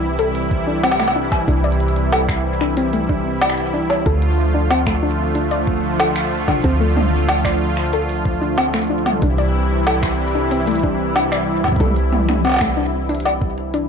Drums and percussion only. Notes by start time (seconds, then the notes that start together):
0.19 closed hi-hat
0.35 closed hi-hat
0.51 kick
0.83 snare, closed hi-hat
0.92 snare
1.00 finger snap, snare, closed hi-hat
1.08 snare
1.32 kick, snare
1.48 kick, closed hi-hat
1.64 closed hi-hat
1.72 closed hi-hat
1.80 closed hi-hat
1.88 closed hi-hat
1.96 closed hi-hat
2.12 snare, closed hi-hat
2.29 finger snap, kick, closed hi-hat
2.61 finger snap
2.77 closed hi-hat
2.93 closed hi-hat
3.09 kick
3.42 snare, closed hi-hat
3.50 finger snap
3.58 closed hi-hat
3.90 snare
4.06 kick, closed hi-hat
4.22 closed hi-hat
4.71 snare, closed hi-hat
4.87 finger snap, kick, closed hi-hat
5.35 closed hi-hat
5.51 closed hi-hat
5.67 kick
6.00 snare, closed hi-hat
6.16 finger snap, closed hi-hat
6.48 kick, snare, mid tom
6.64 kick, closed hi-hat
6.96 mid tom
7.29 snare, closed hi-hat
7.45 finger snap, kick, closed hi-hat
7.77 finger snap
7.93 closed hi-hat
8.09 closed hi-hat
8.25 kick
8.58 snare, closed hi-hat
8.74 finger snap, closed hi-hat
8.76 closed hi-hat
8.79 closed hi-hat
8.82 closed hi-hat
8.85 closed hi-hat
8.87 closed hi-hat
9.06 snare, mid tom
9.22 kick, closed hi-hat
9.38 closed hi-hat
9.87 snare, closed hi-hat
10.03 finger snap, kick, closed hi-hat
10.51 closed hi-hat
10.67 closed hi-hat
10.71 closed hi-hat
10.75 closed hi-hat
10.79 closed hi-hat
10.84 kick
11.16 snare, closed hi-hat
11.32 finger snap, closed hi-hat
11.64 kick, snare, mid tom
11.68 kick
11.72 kick, mid tom
11.76 kick, closed hi-hat
11.80 kick
11.86 mid tom
11.96 closed hi-hat
12.12 mid tom
12.29 finger snap, closed hi-hat, mid tom
12.45 snare, closed hi-hat
12.47 snare
12.49 snare
12.52 snare
12.54 snare
12.56 snare
12.59 finger snap, kick, snare, closed hi-hat
13.09 closed hi-hat
13.15 closed hi-hat
13.20 closed hi-hat
13.26 snare, closed hi-hat
13.42 kick
13.58 closed hi-hat
13.74 closed hi-hat